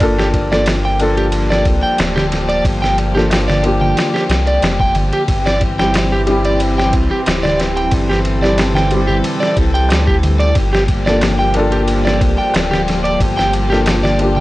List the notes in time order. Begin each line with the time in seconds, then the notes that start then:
0.00 G1 F3 G3 A#3 D4 F4 G4 A4, kick, ride
0.18 G4, snare
0.34 kick, ride
0.51 A#3 D4 F4 A4 D5, snare
0.66 snare, ride, darbuka tek
0.85 G5
0.99 A#3 D4 F4 A4, ride
1.17 G4, ride
1.32 ride
1.50 D5, snare
1.65 C2, kick, ride
1.83 G5
1.98 D1, snare, ride, darbuka tek
2.16 G4, snare, darbuka dum
2.32 snare, ride
2.49 D5, ride
2.64 G1, kick, ride
2.82 G5, snare
2.98 ride
3.15 A#3 D4 F4 G4 A4, snare
3.30 snare, ride, darbuka tek
3.48 D5, snare, darbuka dum
3.63 A#3 D4 F4 G4, ride
3.81 G5, darbuka dum
3.97 snare, ride
4.14 G4, snare
4.29 C2, snare, ride
4.47 D5, ride
4.62 F1, snare, ride, darbuka tek
4.80 G5, kick
4.95 G1, ride, darbuka dum
5.13 G4, ride
5.28 G1 E3 C4, kick, ride
5.46 D5, snare
5.61 kick, ride
5.79 G3 C4 E4 G4 G5, snare
5.94 snare, ride, darbuka tek
6.12 G4
6.26 G3 C4 E4 G4, ride
6.45 D5, ride
6.60 ride
6.78 G5, snare
6.93 C2, kick, ride
7.11 G4
7.26 D1, snare, ride, darbuka tek
7.43 D5, snare, darbuka dum
7.60 snare, ride
7.77 G5, ride
7.91 G1 A4, kick, ride
8.09 G4, snare
8.25 ride
8.42 G3 C4 E4 G4 D5, snare
8.58 snare, ride, darbuka tek
8.74 G5, snare, darbuka dum
8.91 G3 C4 E4 G4, ride
9.07 G4, darbuka dum
9.24 ride
9.40 D5, snare
9.57 C2, kick, ride
9.74 G5, ride
9.89 D2, snare, ride, darbuka tek
10.07 G4, kick
10.23 ride, darbuka dum
10.39 D5, ride
10.55 G1 F3 A#3 G4, kick, ride
10.73 G4, snare
10.88 kick, ride
11.06 A#3 D4 F4 A4 D5, snare
11.21 snare, ride, darbuka tek
11.39 G5
11.54 A#3 D4 F4, ride
11.59 A4
11.72 G4, ride
11.88 ride
12.05 D5, snare
12.21 C2, kick, ride
12.38 G5
12.54 D1, snare, ride, darbuka tek
12.71 G4, snare, darbuka dum
12.88 snare, ride
13.04 D5, ride
13.20 G1, kick, ride
13.37 G5, snare
13.53 ride
13.70 A#3 D4 F4 G4 A4, snare
13.86 snare, ride, darbuka tek
14.03 D5, snare, darbuka dum
14.19 A#3 D4 F4 G4, ride
14.36 G5, darbuka dum